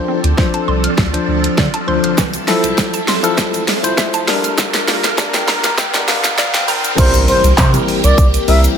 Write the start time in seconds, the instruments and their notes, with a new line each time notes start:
Already playing: tine electric piano F3 D4 C5, string machine F3 C4 D4 A4, riser
0.08 synth pluck C4
0.24 analog synth bass D2, closed hi-hat
0.37 tine electric piano F3 D4 C5, kick, snare
0.54 synth pluck A5, closed hi-hat
0.68 analog synth bass C2, synth pluck C6
0.84 synth pluck F6, closed hi-hat
0.98 analog synth bass D2, kick, snare
1.13 tine electric piano F3 D4 C5, closed hi-hat
1.28 analog synth bass D2
1.44 closed hi-hat
1.58 analog synth bass D3, synth pluck D5, kick, snare
1.74 synth pluck A5, closed hi-hat
1.87 analog synth bass D2, tine electric piano F3 D4 C5, synth pluck C6
2.04 analog synth bass G1, synth pluck F6, closed hi-hat
2.18 analog synth bass C2, synth pluck E3, string machine C4 E4, kick, snare, shaker
2.34 closed hi-hat, shaker
2.47 tine electric piano F3 E4 A4, synth pluck C4, snare, open hi-hat, shaker
2.64 analog synth bass C2, closed hi-hat, shaker
2.78 kick, snare, shaker
2.94 synth pluck A5, closed hi-hat, shaker
3.08 analog synth bass F1, synth pluck C6, snare, open hi-hat, shaker
3.23 tine electric piano F3 E4 A4, synth pluck F6, closed hi-hat, shaker
3.38 kick, snare, shaker
3.54 analog synth bass A1, closed hi-hat, shaker
3.68 snare, open hi-hat, shaker
3.83 analog synth bass C2, tine electric piano F3 E4 C5, closed hi-hat, shaker
3.98 synth pluck E5, kick, snare, shaker
4.13 synth pluck A5, closed hi-hat, shaker
4.27 analog synth bass A#1, tine electric piano G3 D4 A#4, string machine G3 D4 F4 A#4, synth pluck A#5, snare, open hi-hat, shaker
4.44 synth pluck F6, closed hi-hat, shaker
4.58 analog synth bass A#1, synth pluck D3, kick, snare, shaker
4.74 snare, closed hi-hat, shaker
4.88 synth pluck A#3, snare, open hi-hat, shaker
5.04 analog synth bass A#1, snare, closed hi-hat, shaker
5.18 tine electric piano G3 D4 A#4, kick, snare, shaker
5.34 synth pluck G5, snare, closed hi-hat, shaker
5.48 analog synth bass C2, tine electric piano A#5, synth pluck A#5, snare, open hi-hat, shaker
5.64 synth pluck F6, snare, closed hi-hat, shaker
5.78 analog synth bass A#1, tine electric piano G5, kick, snare, shaker
5.93 tine electric piano G3 D4 A#4, snare, closed hi-hat, shaker
6.08 analog synth bass G2, tine electric piano F5, snare, open hi-hat, shaker
6.24 snare, closed hi-hat, shaker
6.38 analog synth bass A#2, synth pluck D5, tine electric piano F5, snare, shaker
6.54 synth pluck G5, snare, closed hi-hat, shaker
6.67 analog synth bass A#1, tine electric piano G3 D4 A#4 G5, synth pluck A#5, open hi-hat, shaker
6.84 analog synth bass G1, synth pluck F6, closed hi-hat, shaker
6.97 analog synth bass C2, string machine E3 A#3 C4 G4, tine electric piano G3 C4 E4 A#4, analog synth lead C5, kick, closed hi-hat, crash, impact, shaker
7.14 closed hi-hat, shaker
7.28 analog synth lead C5, open hi-hat, shaker
7.44 analog synth bass C2, closed hi-hat, shaker
7.58 analog synth bass C3, analog synth lead C5, kick, snare, clap, closed hi-hat, shaker
7.74 tine electric piano G3 C4 E4 A#4, closed hi-hat, shaker
7.88 open hi-hat, shaker
8.04 analog synth bass C2, analog synth lead D5, closed hi-hat, shaker
8.18 analog synth bass C2, kick, closed hi-hat, shaker
8.34 closed hi-hat, shaker
8.48 analog synth bass C2, tine electric piano G3 C4 E4 A#4, analog synth lead E5, open hi-hat, shaker
8.64 closed hi-hat, shaker